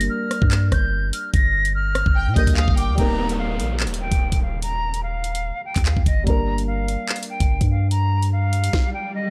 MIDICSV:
0, 0, Header, 1, 8, 480
1, 0, Start_track
1, 0, Key_signature, -2, "minor"
1, 0, Tempo, 410959
1, 1560, Time_signature, 4, 2, 24, 8
1, 10862, End_track
2, 0, Start_track
2, 0, Title_t, "Flute"
2, 0, Program_c, 0, 73
2, 111, Note_on_c, 0, 89, 86
2, 792, Note_off_c, 0, 89, 0
2, 840, Note_on_c, 0, 91, 80
2, 1292, Note_off_c, 0, 91, 0
2, 1317, Note_on_c, 0, 89, 80
2, 1526, Note_off_c, 0, 89, 0
2, 1558, Note_on_c, 0, 94, 103
2, 2010, Note_off_c, 0, 94, 0
2, 2041, Note_on_c, 0, 89, 99
2, 2718, Note_off_c, 0, 89, 0
2, 2760, Note_on_c, 0, 91, 80
2, 2967, Note_off_c, 0, 91, 0
2, 3003, Note_on_c, 0, 87, 85
2, 3209, Note_off_c, 0, 87, 0
2, 3239, Note_on_c, 0, 86, 84
2, 3447, Note_off_c, 0, 86, 0
2, 3483, Note_on_c, 0, 82, 116
2, 3933, Note_off_c, 0, 82, 0
2, 3962, Note_on_c, 0, 77, 87
2, 4399, Note_off_c, 0, 77, 0
2, 4682, Note_on_c, 0, 79, 78
2, 5133, Note_off_c, 0, 79, 0
2, 5167, Note_on_c, 0, 77, 77
2, 5371, Note_off_c, 0, 77, 0
2, 5402, Note_on_c, 0, 82, 99
2, 5853, Note_off_c, 0, 82, 0
2, 5879, Note_on_c, 0, 77, 90
2, 6556, Note_off_c, 0, 77, 0
2, 6603, Note_on_c, 0, 79, 74
2, 6809, Note_off_c, 0, 79, 0
2, 6838, Note_on_c, 0, 77, 76
2, 7046, Note_off_c, 0, 77, 0
2, 7083, Note_on_c, 0, 75, 77
2, 7289, Note_off_c, 0, 75, 0
2, 7318, Note_on_c, 0, 82, 97
2, 7770, Note_off_c, 0, 82, 0
2, 7790, Note_on_c, 0, 77, 85
2, 8472, Note_off_c, 0, 77, 0
2, 8520, Note_on_c, 0, 79, 76
2, 8971, Note_off_c, 0, 79, 0
2, 8994, Note_on_c, 0, 77, 77
2, 9204, Note_off_c, 0, 77, 0
2, 9236, Note_on_c, 0, 82, 95
2, 9689, Note_off_c, 0, 82, 0
2, 9720, Note_on_c, 0, 77, 95
2, 10397, Note_off_c, 0, 77, 0
2, 10441, Note_on_c, 0, 79, 75
2, 10648, Note_off_c, 0, 79, 0
2, 10685, Note_on_c, 0, 75, 82
2, 10862, Note_off_c, 0, 75, 0
2, 10862, End_track
3, 0, Start_track
3, 0, Title_t, "Violin section"
3, 0, Program_c, 1, 48
3, 2521, Note_on_c, 1, 79, 83
3, 2749, Note_off_c, 1, 79, 0
3, 2759, Note_on_c, 1, 75, 87
3, 2988, Note_off_c, 1, 75, 0
3, 3000, Note_on_c, 1, 77, 89
3, 3228, Note_off_c, 1, 77, 0
3, 3240, Note_on_c, 1, 79, 79
3, 3468, Note_off_c, 1, 79, 0
3, 10862, End_track
4, 0, Start_track
4, 0, Title_t, "Felt piano"
4, 0, Program_c, 2, 0
4, 0, Control_c, 2, 64, 127
4, 0, Note_on_c, 2, 55, 66
4, 0, Note_on_c, 2, 58, 65
4, 0, Note_on_c, 2, 62, 64
4, 0, Note_on_c, 2, 70, 76
4, 2695, Note_off_c, 2, 55, 0
4, 2707, Note_off_c, 2, 58, 0
4, 2719, Note_off_c, 2, 62, 0
4, 2730, Note_off_c, 2, 70, 0
4, 2743, Note_on_c, 2, 55, 49
4, 2755, Note_on_c, 2, 58, 44
4, 2766, Note_on_c, 2, 62, 43
4, 2778, Note_on_c, 2, 70, 53
4, 3428, Note_off_c, 2, 55, 0
4, 3445, Note_on_c, 2, 55, 68
4, 3451, Note_off_c, 2, 58, 0
4, 3468, Note_on_c, 2, 58, 62
4, 3483, Note_off_c, 2, 62, 0
4, 3489, Note_off_c, 2, 70, 0
4, 3492, Note_on_c, 2, 63, 65
4, 3496, Control_c, 2, 64, 0
4, 3516, Note_on_c, 2, 70, 75
4, 3681, Control_c, 2, 64, 127
4, 7256, Note_off_c, 2, 55, 0
4, 7268, Note_off_c, 2, 58, 0
4, 7279, Note_off_c, 2, 63, 0
4, 7282, Note_on_c, 2, 55, 61
4, 7291, Note_off_c, 2, 70, 0
4, 7306, Note_on_c, 2, 58, 61
4, 7329, Note_on_c, 2, 62, 59
4, 7336, Control_c, 2, 64, 0
4, 7352, Note_on_c, 2, 70, 76
4, 7516, Control_c, 2, 64, 127
4, 10213, Control_c, 2, 64, 0
4, 10375, Note_off_c, 2, 55, 0
4, 10386, Note_off_c, 2, 58, 0
4, 10398, Note_off_c, 2, 62, 0
4, 10410, Note_off_c, 2, 70, 0
4, 10862, End_track
5, 0, Start_track
5, 0, Title_t, "808-style bass"
5, 0, Program_c, 3, 38
5, 487, Note_on_c, 3, 43, 106
5, 826, Note_off_c, 3, 43, 0
5, 840, Note_on_c, 3, 31, 108
5, 1301, Note_off_c, 3, 31, 0
5, 1561, Note_on_c, 3, 31, 114
5, 2374, Note_off_c, 3, 31, 0
5, 2407, Note_on_c, 3, 31, 112
5, 2648, Note_on_c, 3, 46, 101
5, 2665, Note_off_c, 3, 31, 0
5, 2755, Note_off_c, 3, 46, 0
5, 2760, Note_on_c, 3, 34, 111
5, 2882, Note_off_c, 3, 34, 0
5, 2888, Note_on_c, 3, 38, 104
5, 3118, Note_off_c, 3, 38, 0
5, 3129, Note_on_c, 3, 31, 108
5, 3368, Note_on_c, 3, 38, 104
5, 3385, Note_off_c, 3, 31, 0
5, 3475, Note_off_c, 3, 38, 0
5, 3481, Note_on_c, 3, 27, 108
5, 4201, Note_on_c, 3, 34, 96
5, 4218, Note_off_c, 3, 27, 0
5, 4504, Note_on_c, 3, 27, 97
5, 4521, Note_off_c, 3, 34, 0
5, 4792, Note_off_c, 3, 27, 0
5, 4808, Note_on_c, 3, 27, 102
5, 5038, Note_off_c, 3, 27, 0
5, 5049, Note_on_c, 3, 27, 103
5, 6441, Note_off_c, 3, 27, 0
5, 6728, Note_on_c, 3, 39, 105
5, 6958, Note_off_c, 3, 39, 0
5, 6969, Note_on_c, 3, 39, 101
5, 7073, Note_off_c, 3, 39, 0
5, 7080, Note_on_c, 3, 31, 102
5, 7311, Note_off_c, 3, 31, 0
5, 7321, Note_on_c, 3, 31, 113
5, 8134, Note_off_c, 3, 31, 0
5, 8648, Note_on_c, 3, 31, 100
5, 8878, Note_off_c, 3, 31, 0
5, 8889, Note_on_c, 3, 43, 100
5, 10154, Note_off_c, 3, 43, 0
5, 10862, End_track
6, 0, Start_track
6, 0, Title_t, "Downlifter"
6, 0, Program_c, 4, 103
6, 3480, Note_on_c, 4, 60, 81
6, 7320, Note_off_c, 4, 60, 0
6, 10862, End_track
7, 0, Start_track
7, 0, Title_t, "Swell"
7, 0, Program_c, 5, 103
7, 9241, Note_on_c, 5, 60, 79
7, 10862, Note_off_c, 5, 60, 0
7, 10862, End_track
8, 0, Start_track
8, 0, Title_t, "Drums"
8, 8, Note_on_c, 9, 42, 76
8, 125, Note_off_c, 9, 42, 0
8, 360, Note_on_c, 9, 37, 71
8, 361, Note_on_c, 9, 42, 67
8, 477, Note_off_c, 9, 37, 0
8, 478, Note_off_c, 9, 42, 0
8, 487, Note_on_c, 9, 36, 101
8, 600, Note_on_c, 9, 39, 116
8, 600, Note_on_c, 9, 42, 87
8, 604, Note_off_c, 9, 36, 0
8, 717, Note_off_c, 9, 39, 0
8, 717, Note_off_c, 9, 42, 0
8, 840, Note_on_c, 9, 36, 95
8, 840, Note_on_c, 9, 42, 80
8, 841, Note_on_c, 9, 37, 90
8, 957, Note_off_c, 9, 36, 0
8, 957, Note_off_c, 9, 42, 0
8, 958, Note_off_c, 9, 37, 0
8, 1321, Note_on_c, 9, 42, 98
8, 1437, Note_off_c, 9, 42, 0
8, 1560, Note_on_c, 9, 42, 76
8, 1561, Note_on_c, 9, 36, 124
8, 1677, Note_off_c, 9, 36, 0
8, 1677, Note_off_c, 9, 42, 0
8, 1928, Note_on_c, 9, 42, 79
8, 2044, Note_off_c, 9, 42, 0
8, 2280, Note_on_c, 9, 37, 103
8, 2280, Note_on_c, 9, 42, 65
8, 2396, Note_off_c, 9, 37, 0
8, 2397, Note_off_c, 9, 42, 0
8, 2407, Note_on_c, 9, 36, 104
8, 2524, Note_off_c, 9, 36, 0
8, 2760, Note_on_c, 9, 36, 95
8, 2761, Note_on_c, 9, 42, 88
8, 2877, Note_off_c, 9, 36, 0
8, 2878, Note_off_c, 9, 42, 0
8, 2888, Note_on_c, 9, 36, 99
8, 2888, Note_on_c, 9, 42, 92
8, 3000, Note_on_c, 9, 39, 120
8, 3005, Note_off_c, 9, 36, 0
8, 3005, Note_off_c, 9, 42, 0
8, 3117, Note_off_c, 9, 39, 0
8, 3129, Note_on_c, 9, 36, 94
8, 3241, Note_on_c, 9, 42, 88
8, 3246, Note_off_c, 9, 36, 0
8, 3358, Note_off_c, 9, 42, 0
8, 3480, Note_on_c, 9, 42, 73
8, 3481, Note_on_c, 9, 36, 113
8, 3597, Note_off_c, 9, 36, 0
8, 3597, Note_off_c, 9, 42, 0
8, 3847, Note_on_c, 9, 42, 76
8, 3964, Note_off_c, 9, 42, 0
8, 4201, Note_on_c, 9, 42, 64
8, 4318, Note_off_c, 9, 42, 0
8, 4440, Note_on_c, 9, 39, 112
8, 4440, Note_on_c, 9, 42, 48
8, 4520, Note_off_c, 9, 42, 0
8, 4520, Note_on_c, 9, 42, 65
8, 4557, Note_off_c, 9, 39, 0
8, 4600, Note_off_c, 9, 42, 0
8, 4600, Note_on_c, 9, 42, 82
8, 4717, Note_off_c, 9, 42, 0
8, 4808, Note_on_c, 9, 36, 92
8, 4808, Note_on_c, 9, 42, 86
8, 4924, Note_off_c, 9, 42, 0
8, 4925, Note_off_c, 9, 36, 0
8, 5048, Note_on_c, 9, 42, 87
8, 5049, Note_on_c, 9, 36, 87
8, 5164, Note_off_c, 9, 42, 0
8, 5166, Note_off_c, 9, 36, 0
8, 5402, Note_on_c, 9, 42, 72
8, 5518, Note_off_c, 9, 42, 0
8, 5768, Note_on_c, 9, 42, 75
8, 5885, Note_off_c, 9, 42, 0
8, 6121, Note_on_c, 9, 42, 63
8, 6237, Note_off_c, 9, 42, 0
8, 6248, Note_on_c, 9, 42, 85
8, 6365, Note_off_c, 9, 42, 0
8, 6727, Note_on_c, 9, 39, 71
8, 6728, Note_on_c, 9, 36, 94
8, 6728, Note_on_c, 9, 42, 91
8, 6840, Note_off_c, 9, 39, 0
8, 6840, Note_off_c, 9, 42, 0
8, 6840, Note_on_c, 9, 39, 117
8, 6840, Note_on_c, 9, 42, 61
8, 6845, Note_off_c, 9, 36, 0
8, 6957, Note_off_c, 9, 39, 0
8, 6957, Note_off_c, 9, 42, 0
8, 6969, Note_on_c, 9, 36, 89
8, 7080, Note_off_c, 9, 36, 0
8, 7080, Note_on_c, 9, 36, 98
8, 7080, Note_on_c, 9, 42, 92
8, 7197, Note_off_c, 9, 36, 0
8, 7197, Note_off_c, 9, 42, 0
8, 7321, Note_on_c, 9, 36, 117
8, 7321, Note_on_c, 9, 42, 72
8, 7438, Note_off_c, 9, 36, 0
8, 7438, Note_off_c, 9, 42, 0
8, 7688, Note_on_c, 9, 42, 73
8, 7805, Note_off_c, 9, 42, 0
8, 8041, Note_on_c, 9, 42, 65
8, 8157, Note_off_c, 9, 42, 0
8, 8281, Note_on_c, 9, 39, 115
8, 8281, Note_on_c, 9, 42, 46
8, 8361, Note_off_c, 9, 42, 0
8, 8361, Note_on_c, 9, 42, 66
8, 8398, Note_off_c, 9, 39, 0
8, 8441, Note_off_c, 9, 42, 0
8, 8441, Note_on_c, 9, 42, 82
8, 8557, Note_off_c, 9, 42, 0
8, 8648, Note_on_c, 9, 36, 94
8, 8648, Note_on_c, 9, 42, 89
8, 8764, Note_off_c, 9, 42, 0
8, 8765, Note_off_c, 9, 36, 0
8, 8887, Note_on_c, 9, 42, 90
8, 8889, Note_on_c, 9, 36, 91
8, 9004, Note_off_c, 9, 42, 0
8, 9006, Note_off_c, 9, 36, 0
8, 9240, Note_on_c, 9, 42, 73
8, 9356, Note_off_c, 9, 42, 0
8, 9607, Note_on_c, 9, 42, 73
8, 9724, Note_off_c, 9, 42, 0
8, 9960, Note_on_c, 9, 42, 67
8, 10077, Note_off_c, 9, 42, 0
8, 10087, Note_on_c, 9, 42, 86
8, 10200, Note_on_c, 9, 36, 104
8, 10200, Note_on_c, 9, 38, 88
8, 10204, Note_off_c, 9, 42, 0
8, 10317, Note_off_c, 9, 36, 0
8, 10317, Note_off_c, 9, 38, 0
8, 10862, End_track
0, 0, End_of_file